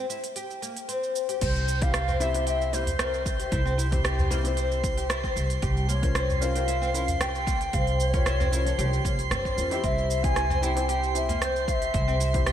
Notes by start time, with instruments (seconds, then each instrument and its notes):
Already playing: felt piano C3 F3 A#4 C5
0.10 oud E4, cabasa
0.24 open hi-hat, cabasa
0.36 oud G4, open hi-hat, cabasa
0.51 cabasa
0.62 oud A#3, open hi-hat, cabasa
0.77 open hi-hat, cabasa
0.89 oud C4, open hi-hat, cabasa
1.03 cabasa
1.16 cabasa
1.29 oud G4, open hi-hat, cabasa
1.41 upright bass C2, oud C4, ney C5, synth texture C6, kick, open hi-hat, crash, cabasa
1.56 cabasa
1.68 cabasa
1.81 felt piano C4 E4 G4 C5, oud G4, ney F5, kick, open hi-hat, cabasa
1.94 oud E4, cross-stick, open hi-hat, cabasa
2.08 oud C4, udu, cabasa
2.20 felt piano C4 E4 G4 C5, oud E4, ney E5, cabasa
2.33 felt piano C4 E4 G4 C5, open hi-hat, cabasa
2.47 oud G4, ney E5, open hi-hat, cabasa
2.62 cabasa
2.72 oud A#3, felt piano C4 E4 G4 C5, ney C5, open hi-hat, cabasa
2.87 open hi-hat, udu, cabasa
2.99 oud C4, ney C5, cross-stick, open hi-hat, cabasa
3.04 ney A#4
3.14 cabasa
3.26 ney C5, kick, cabasa
3.39 oud G4, open hi-hat, cabasa
3.52 upright bass C2, oud E4, kick, open hi-hat, cabasa
3.66 oud C4, cabasa
3.78 oud E4, cabasa
3.91 felt piano C4 E4 G4 C5, kick, open hi-hat, udu, cabasa
4.04 oud G4, cross-stick, open hi-hat, cabasa
4.19 udu, cabasa
4.30 oud A#3, felt piano C4 E4 G4 C5, cabasa
4.43 felt piano C4 E4 G4 C5, open hi-hat, cabasa
4.57 oud C4, open hi-hat, cabasa
4.72 cabasa
4.84 kick, open hi-hat, cabasa
4.97 oud G4, open hi-hat, cabasa
5.09 oud E4, cross-stick, open hi-hat, cabasa
5.24 oud C4, kick, cabasa
5.36 upright bass C2, oud E4, cabasa
5.50 open hi-hat, cabasa
5.62 upright bass C2, oud G4, kick, open hi-hat, cabasa
5.77 cabasa
5.89 oud A#3, ney C#5, cabasa
6.02 felt piano C#4 F4 A#4 C5, kick, open hi-hat, cabasa
6.15 oud C4, cross-stick, open hi-hat, cabasa
6.30 udu, cabasa
6.41 felt piano C#4 F4 A#4 C5, ney F5, cabasa
6.55 felt piano F4 A#4 C5, oud G4, open hi-hat, cabasa
6.68 oud E4, open hi-hat, cabasa
6.82 oud C4, cabasa
6.93 felt piano C#4 F4 A#4 C5, oud E4, open hi-hat, cabasa
7.08 open hi-hat, udu, cabasa
7.20 oud G4, ney G5, cross-stick, open hi-hat, cabasa
7.35 cabasa
7.47 oud A#3, kick, cabasa
7.61 open hi-hat, cabasa
7.73 upright bass C2, oud C4, ney F5, kick, open hi-hat, cabasa
7.87 open hi-hat, cabasa
8.00 ney C#5, cabasa
8.13 felt piano F4 A#4 C#5, oud G4, kick, open hi-hat, udu, cabasa
8.26 oud E4, cross-stick, open hi-hat, cabasa
8.40 oud C4, udu, cabasa
8.51 felt piano C#4 F4 A#4 C5, oud E4, cabasa
8.65 felt piano F3 A#4 C#5, open hi-hat, cabasa
8.78 upright bass C2, oud G4, open hi-hat, cabasa
8.93 cabasa
9.04 upright bass C2, oud A#3, kick, open hi-hat, cabasa
9.19 open hi-hat, cabasa
9.31 upright bass G1, oud C4, cross-stick, open hi-hat, cabasa
9.45 kick, cabasa
9.56 upright bass E2, felt piano C#4 F4 A#4 C5, cabasa
9.70 felt piano C4 E4 G4 E5, oud G4, open hi-hat, cabasa
9.84 upright bass C2, oud C4, ney E5, kick, open hi-hat, cabasa
9.98 cabasa
10.11 cabasa
10.23 felt piano C4 E4 G4 C5, oud G4, ney G#5, kick, open hi-hat, cabasa
10.36 oud E4, cross-stick, open hi-hat, cabasa
10.50 oud C4, udu, cabasa
10.61 felt piano C4 E4 G4 C5, oud E4, ney G5, cabasa
10.75 felt piano C4 E4 G4 C5, open hi-hat, cabasa
10.89 oud G4, ney G5, open hi-hat, cabasa
11.03 cabasa
11.14 felt piano C4 E4 G4 C5, ney E5, open hi-hat, cabasa
11.29 oud A#3, open hi-hat, udu, cabasa
11.41 oud C4, ney C5, cross-stick, open hi-hat, cabasa
11.56 cabasa
11.68 ney F5, kick, cabasa
11.72 ney E5
11.82 oud G4, open hi-hat, cabasa
11.94 upright bass C2, oud E4, kick, open hi-hat, cabasa
12.08 oud C4, cabasa
12.20 oud E4, cabasa
12.33 felt piano C4 E4 G4 C5, kick, open hi-hat, udu, cabasa
12.46 oud G4, cross-stick, open hi-hat, cabasa